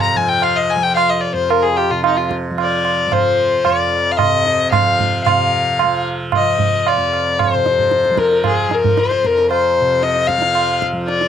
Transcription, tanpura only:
0.00 1.33 F2 medium
0.00 1.90 C3 medium
0.00 0.16 F3 medium
0.16 0.76 F3 medium
0.76 2.51 F3 medium
1.33 3.64 F2 medium
1.91 4.21 C3 medium
2.51 3.07 F3 medium
3.07 4.81 F3 medium
3.65 6.97 F2 medium
4.21 5.26 C3 medium
4.81 5.83 F3 medium
5.26 7.54 C3 medium
5.83 6.40 F3 medium
6.40 8.10 F3 medium
6.97 9.24 F2 medium
7.54 9.80 C3 medium
8.11 8.68 F3 medium
8.68 10.37 F3 medium
9.24 11.28 F2 medium
9.81 11.28 C3 medium
10.37 10.93 F3 medium
10.93 11.28 F3 medium

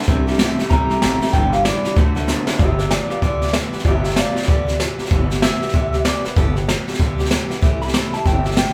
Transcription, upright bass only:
0.08 0.44 C2 medium
0.59 muted upright bass stroke medium
0.71 0.87 B1 medium
0.91 muted upright bass stroke medium
1.03 1.19 A1 medium
1.22 muted upright bass stroke medium
1.34 1.69 G1 medium
1.85 muted upright bass stroke medium
1.97 2.32 D2 loud
2.48 muted upright bass stroke medium
2.60 2.95 G1 medium
3.11 muted upright bass stroke medium
3.22 3.58 D2 medium
3.73 muted upright bass stroke medium
3.85 4.20 G1 loud
4.36 muted upright bass stroke medium
4.48 4.84 D2 medium
5.00 muted upright bass stroke medium
5.11 5.47 G1 medium
5.62 muted upright bass stroke medium
5.74 6.09 D2 medium
6.26 muted upright bass stroke medium
6.37 6.72 G1 medium
6.88 muted upright bass stroke medium
7.00 7.35 D2 medium
7.51 muted upright bass stroke medium
7.63 7.98 C2 medium
8.13 muted upright bass stroke medium
8.26 8.62 G1 loud

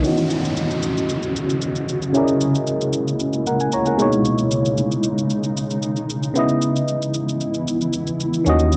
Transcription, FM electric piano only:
0.02 2.10 D#3 medium
0.02 2.11 C#4 medium
0.02 2.11 F#4 medium
0.07 2.12 D#5 medium
2.13 3.94 C#3 medium
2.13 3.95 C#4 medium
2.13 3.95 E4 medium
2.13 3.96 G#4 medium
2.17 3.45 A#4 medium
2.17 2.23 D5 medium
2.24 3.48 D#5 medium
3.47 3.60 A#4 medium
3.47 3.60 F#5 medium
3.61 3.72 G#5 medium
3.73 3.86 C#5 medium
3.73 3.86 A#5 medium
3.87 4.12 A#4 medium
3.87 4.12 F#5 medium
3.97 6.04 B2 medium
3.97 6.05 G#3 medium
3.97 6.06 D#4 medium
4.02 6.07 C#5 medium
6.34 8.41 C#3 medium
6.34 8.42 B3 medium
6.34 8.43 E4 medium
6.39 8.44 D#5 medium
8.44 8.77 D#3 medium
8.44 8.77 C#4 medium
8.44 8.77 F#4 medium
8.49 8.77 D#5 medium

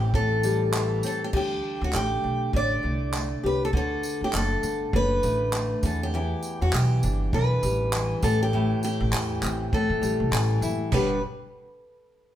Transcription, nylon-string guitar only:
0.00 0.13 A2 medium
0.00 0.73 E3 medium
0.00 1.03 C4 medium
0.00 1.33 E4 medium
0.14 1.41 A2 medium
0.44 1.93 G3 medium
0.75 1.33 E3 medium
1.04 1.41 C4 medium
1.33 2.53 D3 medium
1.33 3.42 G4 medium
1.93 2.82 A3 medium
2.24 4.63 D4 soft
2.54 3.73 D3 medium
2.83 3.13 A3 medium
3.14 4.33 A3 medium
3.43 3.73 G4 medium
3.73 4.93 D3 medium
3.73 5.91 F#4 medium
4.34 5.23 A3 medium
4.64 7.03 B3 soft
4.94 6.17 D3 medium
5.24 5.52 A3 medium
5.53 5.91 A3 medium
5.84 6.13 E2 medium
6.14 7.32 E2 medium
6.14 8.54 E4 medium
6.74 7.93 E3 medium
7.03 8.30 D4 medium
7.33 8.23 E2 medium
7.63 8.56 G3 medium
7.93 9.13 E3 medium
8.23 8.52 A2 medium
8.53 9.72 A2 medium
8.53 10.62 E4 medium
9.13 10.32 E3 medium
9.43 10.94 C4 medium
9.73 10.92 A2 medium
10.03 10.93 G3 medium
10.33 10.93 E3 medium
10.63 10.94 E4 medium
10.92 11.17 G2 medium
10.92 11.18 D3 medium
10.92 11.18 G3 medium
10.92 11.18 B3 medium
10.92 11.18 D4 medium
10.92 11.19 G4 medium

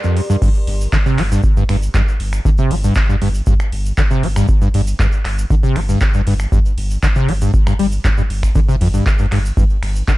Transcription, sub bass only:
0.67 0.88 G1 loud
1.18 1.38 G1 medium
1.69 1.89 G1 medium
2.20 2.40 G1 medium
2.71 2.91 G1 loud
3.22 3.42 G1 medium
3.72 3.93 G1 medium
4.23 4.43 G1 medium
4.74 4.94 G1 medium
5.25 5.45 G1 medium
5.76 5.96 G1 medium
6.27 6.47 G1 medium
6.78 6.98 G1 loud
7.28 7.49 G1 medium
7.79 7.99 G1 medium
8.30 8.50 G1 medium
8.81 9.01 G1 loud
9.32 9.52 G1 medium
9.83 10.03 G1 medium

